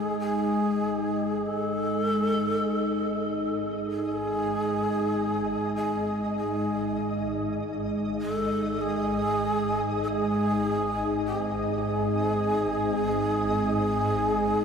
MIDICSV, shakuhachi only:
0, 0, Header, 1, 2, 480
1, 0, Start_track
1, 0, Tempo, 1224490
1, 1529, Time_signature, 4, 2, 24, 8
1, 5741, End_track
2, 0, Start_track
2, 0, Title_t, "Shakuhachi"
2, 0, Program_c, 0, 77
2, 0, Note_on_c, 0, 68, 106
2, 73, Note_off_c, 0, 68, 0
2, 76, Note_on_c, 0, 68, 94
2, 570, Note_on_c, 0, 69, 102
2, 576, Note_off_c, 0, 68, 0
2, 1424, Note_off_c, 0, 69, 0
2, 1533, Note_on_c, 0, 68, 104
2, 2236, Note_off_c, 0, 68, 0
2, 2257, Note_on_c, 0, 68, 91
2, 2477, Note_off_c, 0, 68, 0
2, 2496, Note_on_c, 0, 68, 83
2, 2957, Note_off_c, 0, 68, 0
2, 3219, Note_on_c, 0, 69, 109
2, 3453, Note_on_c, 0, 68, 112
2, 3459, Note_off_c, 0, 69, 0
2, 3929, Note_off_c, 0, 68, 0
2, 3931, Note_on_c, 0, 69, 99
2, 3951, Note_on_c, 0, 68, 107
2, 3955, Note_off_c, 0, 69, 0
2, 4395, Note_off_c, 0, 68, 0
2, 4413, Note_on_c, 0, 67, 95
2, 4472, Note_off_c, 0, 67, 0
2, 4472, Note_on_c, 0, 68, 95
2, 5741, Note_off_c, 0, 68, 0
2, 5741, End_track
0, 0, End_of_file